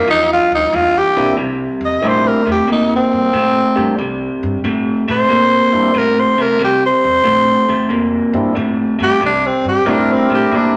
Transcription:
0.07 0.35 E2 medium
0.07 0.68 G2 medium
0.07 0.68 F3 loud
0.07 0.30 D#4 loud
0.33 0.52 F4 loud
0.52 0.65 D2 loud
0.52 0.76 D#4 medium
0.73 1.01 E2 loud
0.73 1.12 G2 medium
0.73 1.12 E3 medium
0.73 1.00 F4 medium
0.98 1.38 G4 loud
1.16 1.30 B1 loud
1.16 1.35 G2 medium
1.16 1.36 E3 medium
1.16 1.35 G3 medium
1.16 1.36 A#3 medium
1.16 1.36 C4 medium
1.16 1.36 D4 medium
1.16 1.36 E4 medium
1.37 1.65 C2 medium
1.37 1.98 C3 medium
1.37 1.98 G3 medium
1.81 1.95 E2 medium
1.85 2.09 D#5 medium
2.01 2.30 A#1 medium
2.01 2.42 C3 medium
2.01 2.41 G3 medium
2.01 2.42 A3 medium
2.01 2.41 A#3 medium
2.01 2.42 C4 medium
2.01 2.42 D4 medium
2.01 2.42 E4 medium
2.08 2.29 C5 medium
2.28 2.47 A#4 medium
2.46 2.60 E2 medium
2.46 2.65 C3 medium
2.46 2.66 A3 medium
2.51 2.70 G4 medium
2.67 2.96 F2 medium
2.67 3.28 C3 medium
2.67 3.29 A#3 medium
2.72 2.91 D#4 medium
2.96 4.19 C4 medium
3.13 3.26 G2 medium
3.33 3.61 A2 medium
3.33 3.72 C3 medium
3.33 3.73 A3 medium
3.75 3.90 G2 medium
3.75 3.96 C3 medium
3.75 3.95 G3 medium
3.75 3.96 A3 medium
3.75 3.95 A#3 medium
3.75 3.95 C4 medium
3.75 3.96 D4 medium
3.75 3.96 G4 medium
3.98 4.26 C2 medium
3.98 4.59 C3 medium
3.98 4.59 G3 medium
4.43 4.56 G2 medium
4.64 4.92 A2 medium
4.64 5.03 C3 medium
4.64 5.04 A3 medium
5.08 5.22 A#2 medium
5.08 5.27 C3 medium
5.08 5.27 A3 medium
5.08 5.99 C5 loud
5.29 5.57 A2 medium
5.29 5.90 C3 medium
5.29 5.90 A#3 loud
5.72 5.87 G2 medium
5.72 5.92 G3 medium
5.72 5.92 A#3 medium
5.72 5.92 C4 medium
5.72 5.92 D4 medium
5.72 5.92 E4 medium
5.94 6.22 A2 medium
5.94 6.33 C3 medium
5.94 6.34 A3 medium
5.94 6.21 A#4 medium
6.19 6.43 C5 medium
6.38 6.52 C3 medium
6.38 6.57 C3 medium
6.38 6.58 A3 medium
6.38 6.61 A#4 medium
6.59 6.88 C2 medium
6.59 7.20 C3 medium
6.59 7.20 G3 medium
6.64 6.83 G4 medium
6.86 8.10 C5 medium
7.04 7.18 E2 medium
7.24 7.53 A#1 medium
7.24 7.64 C3 medium
7.24 7.64 A3 loud
7.69 7.82 E2 medium
7.69 7.88 C3 medium
7.69 7.88 A3 medium
7.89 8.18 F2 medium
7.89 8.51 C3 medium
7.89 8.51 A#3 medium
8.33 8.47 G2 medium
8.33 8.53 G3 medium
8.33 8.54 A#3 medium
8.33 8.54 C4 medium
8.33 8.54 D4 medium
8.33 8.54 E4 medium
8.55 8.84 A2 loud
8.55 8.95 C3 medium
8.55 8.95 A3 medium
8.99 9.13 G2 medium
8.99 9.18 C3 medium
8.99 9.18 A3 medium
9.03 9.22 G4 medium
9.20 9.48 C2 medium
9.20 9.82 C3 medium
9.20 9.82 G3 medium
9.26 9.49 D4 medium
9.47 9.66 C4 medium
9.64 9.78 G2 medium
9.69 9.92 G4 medium
9.86 10.14 A2 medium
9.86 10.25 C3 medium
9.86 10.77 G3 medium
9.86 10.25 A3 medium
9.86 10.77 C4 medium
9.86 10.77 D4 medium
9.86 10.77 E4 medium
9.86 10.77 A#4 medium
9.90 10.14 D4 medium
10.12 10.31 C4 medium
10.30 10.43 A#2 medium
10.30 10.49 C3 medium
10.30 10.50 A3 medium
10.34 10.57 G4 medium
10.52 10.77 A2 medium
10.52 10.77 C3 medium
10.52 10.77 A#3 medium
10.56 10.75 D4 medium

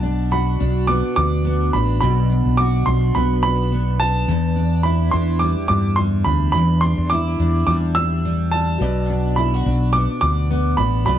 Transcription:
0.00 0.56 B1 loud
0.00 2.00 B2 medium
0.00 0.60 D4 medium
0.00 0.34 A5 medium
0.31 2.57 F#4 medium
0.31 0.90 B5 medium
0.60 1.01 B1 medium
0.60 1.17 D4 medium
0.87 1.44 B3 medium
0.87 1.15 D6 medium
1.16 1.70 D2 medium
1.16 1.73 D4 medium
1.16 1.75 D6 loud
1.45 3.15 B3 medium
1.73 2.00 A1 loud
1.73 2.29 D4 medium
1.73 1.99 B5 medium
2.01 2.42 B1 loud
2.01 4.28 B2 medium
2.01 2.59 B5 medium
2.30 2.86 D4 medium
2.46 2.83 B1 medium
2.57 4.34 F#4 medium
2.57 2.87 D6 medium
2.86 3.13 B1 loud
2.86 3.43 D4 medium
2.86 3.15 C6 medium
3.15 4.24 B1 loud
3.15 3.72 B3 medium
3.15 3.41 B5 medium
3.43 4.00 D4 medium
3.43 4.01 B5 loud
3.72 5.41 B3 medium
4.00 4.56 D4 medium
4.00 4.81 A5 loud
4.28 5.09 E2 loud
4.28 6.54 E2 medium
4.56 5.13 D4 medium
4.83 7.11 E4 medium
4.83 5.10 B5 medium
5.11 5.54 E2 loud
5.11 5.69 D4 medium
5.11 5.38 C6 medium
5.39 5.97 G3 medium
5.39 5.67 D6 medium
5.68 6.22 G2 loud
5.68 6.26 D4 medium
5.68 5.95 D6 medium
5.96 7.67 G3 medium
5.96 6.03 C6 medium
6.24 6.52 D2 medium
6.24 6.83 D4 medium
6.24 6.51 B5 medium
6.52 6.95 E2 loud
6.52 8.81 E2 medium
6.52 6.82 B5 loud
6.81 7.39 D4 medium
6.81 7.11 C6 medium
6.98 7.36 E2 loud
7.10 8.87 E4 medium
7.10 7.65 D6 loud
7.40 7.65 E2 medium
7.40 7.96 D4 medium
7.67 8.76 E2 loud
7.67 8.24 G3 medium
7.67 7.73 D6 medium
7.95 8.53 D4 medium
7.95 8.53 E6 loud
8.25 8.87 G3 medium
8.51 9.10 D4 medium
8.51 9.39 A5 loud
8.78 9.61 B1 loud
8.78 11.05 B2 medium
8.78 11.01 F#4 medium
8.78 11.02 B4 medium
8.78 11.03 D5 medium
9.10 9.66 D4 medium
9.36 9.54 E4 medium
9.36 9.89 B5 medium
9.54 11.19 F#4 medium
9.66 10.06 B1 loud
9.66 10.22 D4 medium
9.93 10.50 B3 medium
9.93 10.19 D6 medium
10.21 10.74 D2 medium
10.21 10.78 D4 medium
10.21 10.80 D6 loud
10.51 11.19 B3 medium
10.77 11.04 A1 medium
10.77 11.19 D4 medium
10.77 11.04 B5 medium
11.05 11.19 B1 loud
11.05 11.19 B2 medium
11.05 11.19 F#4 medium
11.05 11.19 B4 medium
11.05 11.19 D5 medium
11.05 11.19 B5 medium

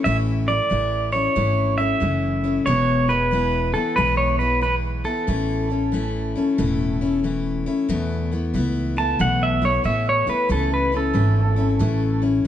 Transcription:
0.04 0.59 A1 medium
0.04 0.49 A2 medium
0.04 0.49 E3 medium
0.04 0.49 A3 medium
0.04 0.49 C#4 medium
0.04 0.47 E4 medium
0.04 0.16 E5 loud
0.48 0.69 A3 soft
0.48 0.71 E4 medium
0.48 1.12 D5 medium
0.70 1.27 A1 medium
0.70 1.14 E3 medium
0.70 1.13 A3 medium
0.70 1.11 E4 medium
1.12 1.34 A3 soft
1.12 1.35 C#4 soft
1.12 1.35 E4 medium
1.12 1.77 C#5 medium
1.36 1.92 G#1 medium
1.36 1.79 E3 medium
1.36 1.78 A3 medium
1.36 1.77 C#4 medium
1.36 1.76 E4 medium
1.78 2.00 A3 soft
1.78 2.01 C#4 soft
1.78 2.01 E4 soft
1.78 2.65 E5 loud
2.00 2.57 F#1 medium
2.00 2.44 E3 medium
2.00 2.45 A3 medium
2.00 2.43 C#4 medium
2.00 2.42 E4 medium
2.44 2.67 A3 soft
2.44 2.67 C#4 medium
2.44 2.66 E4 medium
2.66 3.73 E1 medium
2.66 3.10 E2 medium
2.66 3.10 B2 medium
2.66 3.09 E3 medium
2.66 3.09 G#3 medium
2.66 3.08 B3 medium
2.66 3.07 E4 medium
2.66 3.11 C#5 medium
3.08 3.30 E3 soft
3.08 3.31 G#3 soft
3.08 3.31 B3 soft
3.08 3.32 E4 soft
3.08 3.71 B4 medium
3.31 3.75 E3 medium
3.31 3.75 G#3 medium
3.31 3.74 B3 medium
3.31 3.73 E4 medium
3.74 3.96 E3 soft
3.74 3.97 B3 soft
3.74 3.97 E4 medium
3.74 3.98 A4 medium
3.96 5.03 B1 medium
3.96 4.40 E2 medium
3.96 4.40 B2 medium
3.96 4.41 E3 medium
3.96 4.40 G#3 medium
3.96 4.39 B3 medium
3.96 4.38 E4 medium
3.96 4.17 B4 medium
4.17 4.39 C#5 medium
4.39 4.60 E3 soft
4.39 4.61 G#3 soft
4.39 4.62 B3 soft
4.39 4.62 E4 soft
4.39 4.61 B4 medium
4.61 5.05 E3 medium
4.61 5.06 G#3 medium
4.61 5.04 B3 medium
4.61 5.03 E4 medium
4.61 4.74 B4 medium
5.04 5.26 E3 soft
5.04 5.28 B3 soft
5.04 5.27 E4 medium
5.04 7.19 A4 medium
5.27 6.34 A1 medium
5.27 5.71 A2 medium
5.27 5.71 E3 medium
5.27 5.71 A3 medium
5.27 5.70 C#4 medium
5.27 5.69 E4 medium
5.70 5.92 A3 soft
5.70 5.92 C#4 soft
5.70 5.93 E4 soft
5.92 6.36 E3 medium
5.92 6.36 A3 medium
5.92 6.36 C#4 medium
5.92 6.34 E4 medium
6.35 6.57 A3 medium
6.35 6.58 C#4 medium
6.35 6.58 E4 medium
6.58 7.64 E1 medium
6.58 7.01 A2 medium
6.58 7.02 E3 medium
6.58 7.02 A3 medium
6.58 7.01 C#4 medium
6.58 7.00 E4 medium
7.01 7.23 A3 soft
7.01 7.24 C#4 soft
7.01 7.24 E4 medium
7.24 7.67 E3 medium
7.24 7.67 A3 medium
7.24 7.66 C#4 medium
7.24 7.65 E4 medium
7.66 7.88 A3 soft
7.66 7.89 C#4 medium
7.66 7.89 E4 medium
7.89 8.32 E2 medium
7.89 8.52 E2 medium
7.89 8.32 B2 medium
7.89 8.32 E3 medium
7.89 8.32 A3 medium
7.89 8.31 B3 medium
7.89 8.30 E4 medium
8.31 8.52 E3 soft
8.31 8.53 A3 soft
8.31 8.54 B3 medium
8.31 8.54 E4 soft
8.54 9.18 C#2 medium
8.54 8.97 E3 medium
8.54 8.97 A3 medium
8.54 8.96 B3 medium
8.54 8.95 E4 medium
8.96 9.19 E3 soft
8.96 9.19 A3 soft
8.96 9.19 B3 soft
8.96 9.19 E4 medium
8.96 9.19 A5 medium
9.19 9.83 B1 medium
9.19 9.62 E2 medium
9.19 9.62 B2 medium
9.19 9.62 E3 medium
9.19 9.62 A3 medium
9.19 9.61 B3 medium
9.19 9.60 E4 medium
9.19 9.42 F#5 medium
9.43 9.63 E5 medium
9.62 9.82 E3 soft
9.62 9.83 A3 soft
9.62 9.84 B3 soft
9.62 9.84 E4 medium
9.62 9.85 C#5 medium
9.84 10.25 A1 medium
9.84 10.27 E3 medium
9.84 10.27 A3 medium
9.84 10.26 B3 medium
9.84 10.26 E4 medium
9.84 10.06 E5 medium
10.09 10.29 C#5 medium
10.27 10.48 E3 soft
10.27 10.48 A3 soft
10.27 10.49 B3 soft
10.27 10.49 E4 medium
10.27 10.50 B4 medium
10.27 muted upright bass stroke soft
10.49 11.13 C#2 medium
10.49 10.92 E3 medium
10.49 10.93 A3 medium
10.49 10.92 C#4 medium
10.49 10.91 E4 medium
10.49 10.72 A4 medium
10.74 10.94 B4 medium
10.92 11.13 A3 soft
10.92 11.14 C#4 medium
10.92 11.14 E4 medium
10.97 12.22 A4 medium
11.13 11.78 G#1 medium
11.13 11.57 E3 medium
11.13 11.57 A3 medium
11.13 11.56 C#4 medium
11.13 11.55 E4 medium
11.56 11.79 A3 soft
11.56 11.79 C#4 medium
11.56 11.79 E4 medium
11.79 12.44 A1 medium
11.79 12.23 E3 medium
11.79 12.23 A3 medium
11.79 12.22 C#4 medium
11.79 12.21 E4 medium
12.22 12.44 A3 soft
12.22 12.45 C#4 medium
12.22 12.45 E4 medium

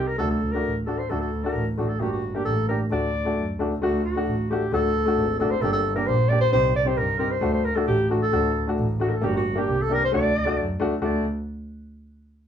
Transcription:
0.07 0.17 A#4 medium
0.18 0.47 D2 medium
0.18 0.36 A3 medium
0.18 0.37 D4 medium
0.18 0.37 F#4 medium
0.18 0.30 A4 loud
0.30 0.54 A4 medium
0.52 0.71 A3 medium
0.52 0.71 D4 medium
0.52 0.72 F#4 medium
0.52 0.76 A#4 loud
0.65 0.92 A1 medium
0.86 0.99 A3 medium
0.86 0.99 D4 medium
0.86 0.99 F#4 medium
0.86 1.00 A4 medium
0.99 1.11 C5 medium
1.09 1.37 D2 medium
1.09 1.27 A3 medium
1.09 1.28 D4 medium
1.09 1.28 F#4 medium
1.09 1.20 A4 medium
1.21 1.45 A4 medium
1.44 1.61 A3 medium
1.44 1.61 D4 medium
1.44 1.62 F#4 medium
1.44 1.67 A#4 medium
1.55 1.82 A1 loud
1.77 1.89 A3 medium
1.77 1.90 D4 medium
1.77 1.90 F#4 medium
1.88 2.02 A4 loud
2.00 2.28 G1 medium
2.00 2.17 A#3 medium
2.00 2.18 D4 medium
2.00 2.12 F#4 medium
2.00 2.19 G4 medium
2.12 2.37 F#4 medium
2.35 2.52 A#3 medium
2.35 2.52 D4 medium
2.35 2.45 G4 medium
2.35 2.52 G4 medium
2.45 2.73 A1 loud
2.45 2.67 A4 loud
2.69 2.80 A#3 medium
2.69 2.80 D4 medium
2.69 2.81 G4 medium
2.69 2.79 A#4 medium
2.90 3.18 D2 medium
2.90 3.08 A3 medium
2.90 3.08 D4 medium
2.90 3.09 F#4 medium
2.90 3.55 D5 medium
3.25 3.42 A3 medium
3.25 3.43 D4 medium
3.25 3.43 F#4 medium
3.37 3.57 F#2 medium
3.59 3.79 D2 medium
3.59 3.70 A3 medium
3.59 3.71 D4 medium
3.59 3.71 F#4 medium
3.81 4.09 D2 medium
3.81 3.99 A3 medium
3.81 3.99 D4 medium
3.81 4.03 F#4 loud
3.81 3.99 F#4 medium
4.05 4.46 F#4 medium
4.16 4.32 A3 medium
4.16 4.33 D4 medium
4.16 4.33 F#4 medium
4.27 4.54 A1 medium
4.50 4.61 A3 medium
4.50 4.62 D4 medium
4.50 4.62 F#4 medium
4.50 4.71 G4 medium
4.72 4.99 D2 loud
4.72 4.89 A3 medium
4.72 4.89 D4 medium
4.72 4.90 F#4 medium
4.72 5.36 A4 loud
5.06 5.23 A3 medium
5.06 5.23 D4 medium
5.06 5.24 F#4 medium
5.17 5.44 G#1 loud
5.39 5.51 A3 medium
5.39 5.52 D4 medium
5.39 5.52 F#4 medium
5.39 5.52 A4 loud
5.51 5.63 C5 loud
5.61 5.89 G1 loud
5.61 5.79 A#3 medium
5.61 5.79 D4 medium
5.61 5.80 G4 medium
5.61 5.72 A4 loud
5.73 5.94 A4 loud
5.96 6.13 A#3 medium
5.96 6.13 D4 medium
5.96 6.14 G4 medium
5.96 6.08 A#4 medium
6.07 6.35 A#1 loud
6.07 6.30 C5 loud
6.29 6.41 A#3 medium
6.29 6.42 D4 medium
6.29 6.42 G4 medium
6.29 6.40 D5 medium
6.41 6.51 C5 loud
6.52 6.80 C2 loud
6.52 6.69 C4 medium
6.52 6.70 D#4 medium
6.52 6.70 G4 medium
6.52 6.73 C5 loud
6.76 6.89 D5 loud
6.85 7.03 C4 medium
6.85 7.03 D#4 medium
6.85 7.04 G4 medium
6.85 6.99 C5 loud
6.97 7.25 G2 medium
6.97 7.19 A#4 loud
7.19 7.31 C4 medium
7.19 7.31 D#4 medium
7.19 7.32 G4 medium
7.19 7.32 A#4 medium
7.31 7.53 C5 loud
7.41 7.69 D2 loud
7.41 7.59 A3 medium
7.41 7.59 D4 medium
7.41 7.59 F#4 medium
7.54 7.66 C5 medium
7.64 7.77 A#4 loud
7.75 7.93 A3 medium
7.75 7.93 D4 medium
7.75 7.94 F#4 medium
7.75 7.87 A4 medium
7.87 8.15 A1 loud
7.87 8.09 G4 loud
8.10 8.21 A3 medium
8.10 8.22 D4 medium
8.10 8.21 F#4 medium
8.10 8.22 F#4 medium
8.22 8.70 A4 loud
8.32 8.60 D2 loud
8.32 8.49 A3 medium
8.32 8.50 D4 medium
8.32 8.50 F#4 medium
8.67 8.84 A3 medium
8.67 8.84 D4 medium
8.67 8.85 F#4 medium
8.78 9.05 A1 loud
9.00 9.11 A3 medium
9.00 9.12 D4 medium
9.00 9.12 F#4 medium
9.00 9.11 F#4 medium
9.09 9.15 A#4 medium
9.14 9.27 A4 medium
9.22 9.51 G1 loud
9.22 9.39 A#3 medium
9.22 9.40 D4 medium
9.22 9.40 G4 medium
9.26 9.36 F#4 medium
9.37 9.61 F#4 medium
9.56 9.73 A#3 medium
9.56 9.74 D4 medium
9.56 9.74 G4 medium
9.56 9.83 G4 medium
9.69 9.96 C2 medium
9.82 9.95 A4 loud
9.90 10.02 A#3 medium
9.90 10.02 D4 medium
9.90 10.03 G4 medium
9.90 10.04 A#4 loud
10.04 10.14 C5 loud
10.12 10.41 D2 medium
10.12 10.30 A3 medium
10.12 10.30 D4 medium
10.12 10.31 F#4 medium
10.12 10.78 D5 loud
10.45 10.63 A3 medium
10.45 10.63 D4 medium
10.45 10.64 F#4 medium
10.59 10.79 F#2 medium
10.80 11.01 D2 medium
10.80 10.92 A3 medium
10.80 10.92 D4 medium
10.80 10.93 F#4 medium
11.02 11.25 D2 medium
11.02 11.24 A3 medium
11.02 11.24 D4 medium
11.02 11.24 F#4 medium
11.02 11.25 D5 medium

